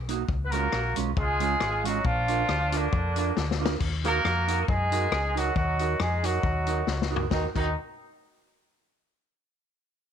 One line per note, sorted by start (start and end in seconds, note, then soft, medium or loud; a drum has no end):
0.00 0.22 B1 loud
0.08 0.22 A#3 medium
0.08 0.22 D#4 medium
0.08 0.23 F#4 medium
0.08 closed hi-hat loud
0.28 0.66 C#2 loud
0.28 kick loud
0.45 0.53 B3 medium
0.45 0.53 B4 medium
0.51 0.65 G#3 medium
0.51 0.96 A#3 loud
0.51 0.66 C#4 medium
0.51 0.67 F4 loud
0.51 0.97 F#4 loud
0.51 0.96 A#4 loud
0.51 closed hi-hat loud
0.72 0.94 A#1 medium
0.72 cross-stick loud
0.96 1.14 B1 medium
0.96 1.09 G#3 medium
0.96 1.10 C#4 medium
0.96 1.10 F4 medium
0.96 closed hi-hat loud
1.17 1.54 C#2 loud
1.17 1.81 G#3 loud
1.17 1.81 F4 medium
1.17 1.81 G#4 loud
1.17 kick loud
1.40 1.53 G#3 medium
1.40 1.54 C#4 medium
1.40 1.54 F4 medium
1.40 closed hi-hat loud
1.60 1.98 G#1 medium
1.60 cross-stick loud
1.84 2.06 F#3 medium
1.84 1.97 G#3 medium
1.84 1.98 C#4 medium
1.84 2.05 D#4 medium
1.84 1.98 F4 medium
1.84 2.06 F#4 loud
1.84 closed hi-hat loud
2.05 2.42 A#1 loud
2.05 2.73 F3 loud
2.05 2.73 D4 medium
2.05 2.73 F4 loud
2.05 kick loud
2.28 2.41 D4 medium
2.28 2.42 F4 medium
2.28 2.42 A#4 medium
2.28 closed hi-hat medium
2.49 2.86 D2 medium
2.49 cross-stick loud
2.72 3.62 D3 medium
2.72 3.61 A#3 medium
2.72 2.85 D4 medium
2.72 3.62 D4 medium
2.72 2.86 F4 medium
2.72 2.86 A#4 medium
2.72 closed hi-hat loud
2.93 3.30 F2 medium
2.93 kick loud
3.16 3.30 D4 medium
3.16 3.30 F4 medium
3.16 3.30 A#4 medium
3.16 closed hi-hat loud
3.37 3.74 D2 medium
3.37 snare medium
3.51 snare medium
3.60 3.73 D4 medium
3.60 3.74 F4 loud
3.60 3.74 A#4 medium
3.66 snare loud
3.80 4.18 D#2 loud
3.80 kick loud
3.80 crash loud
4.04 4.65 A#3 loud
4.04 4.17 D#4 medium
4.04 4.18 F#4 loud
4.04 4.65 F#4 medium
4.04 4.65 A#4 loud
4.04 4.18 A#4 loud
4.04 cross-stick medium
4.04 closed hi-hat loud
4.25 4.62 F2 medium
4.25 cross-stick loud
4.48 4.61 D#4 medium
4.48 4.61 F#4 medium
4.48 4.62 A#4 medium
4.48 closed hi-hat loud
4.68 5.06 F#2 medium
4.68 5.37 G#3 loud
4.68 5.37 D#4 medium
4.68 5.37 G#4 loud
4.68 kick loud
4.92 5.05 D#4 medium
4.92 5.05 F#4 medium
4.92 5.06 A#4 medium
4.92 closed hi-hat medium
5.11 5.49 C#2 medium
5.11 cross-stick loud
5.35 5.56 F#3 medium
5.35 5.49 D#4 medium
5.35 5.57 D#4 medium
5.35 5.49 F#4 medium
5.35 5.56 F#4 loud
5.35 5.50 A#4 medium
5.35 closed hi-hat loud
5.56 5.93 D#2 loud
5.56 5.97 F#3 medium
5.56 5.98 D#4 medium
5.56 5.97 F#4 medium
5.56 kick loud
5.79 5.93 D#4 medium
5.79 5.93 F#4 medium
5.79 5.94 A#4 medium
5.79 closed hi-hat medium
6.00 6.37 F2 loud
6.00 6.24 G#3 medium
6.00 6.24 D#4 medium
6.00 6.24 G#4 medium
6.00 cross-stick loud
6.23 7.12 F#3 medium
6.23 6.37 D#4 medium
6.23 7.12 D#4 medium
6.23 6.37 F#4 medium
6.23 7.12 F#4 medium
6.23 6.38 A#4 medium
6.23 closed hi-hat loud
6.43 6.81 D#2 medium
6.43 kick loud
6.67 6.80 D#4 medium
6.67 6.81 F#4 medium
6.67 6.81 A#4 medium
6.67 closed hi-hat medium
6.87 7.24 C#2 medium
6.87 snare medium
7.02 snare medium
7.11 7.24 D#4 medium
7.11 7.24 F#4 medium
7.11 7.25 A#4 medium
7.16 floor tom loud
7.30 7.45 D#2 loud
7.30 7.45 D#3 medium
7.30 7.45 D#4 medium
7.30 7.46 F#4 medium
7.30 7.46 A#4 loud
7.30 kick loud
7.30 snare medium
7.55 7.74 D#2 loud
7.55 7.74 D#3 medium
7.55 7.67 D#4 medium
7.55 7.74 D#4 loud
7.55 7.67 F#4 medium
7.55 7.68 A#4 medium
7.55 kick loud
7.55 crash medium